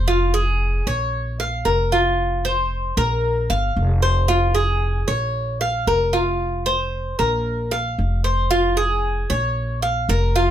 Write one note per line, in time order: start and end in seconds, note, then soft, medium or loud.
0.00 0.80 F1 medium
0.08 0.33 F4 medium
0.34 0.85 G#4 medium
0.87 1.62 A#1 medium
0.87 1.38 C#5 medium
1.40 1.65 F5 medium
1.65 2.91 F1 medium
1.65 1.91 A#4 medium
1.92 2.43 F4 medium
2.45 2.96 C5 medium
2.97 3.46 A#1 medium
2.97 3.49 A#4 medium
3.50 3.75 G1 medium
3.50 4.01 F5 medium
3.76 5.02 F1 medium
4.02 4.28 C5 medium
4.28 4.54 F4 medium
4.55 5.06 G#4 medium
5.08 5.83 A#1 medium
5.08 5.59 C#5 medium
5.61 5.87 F5 medium
5.87 7.12 F1 medium
5.87 6.13 A#4 medium
6.13 6.65 F4 medium
6.66 7.17 C5 medium
7.19 7.94 A#1 medium
7.19 7.70 A#4 medium
7.71 8.23 F5 medium
7.98 9.24 F1 medium
8.24 8.50 C5 medium
8.51 8.76 F4 medium
8.77 9.28 G#4 medium
9.30 10.05 A#1 medium
9.30 9.81 C#5 medium
9.82 10.08 F5 medium
10.09 10.51 F1 medium
10.09 10.35 A#4 medium
10.36 10.51 F4 medium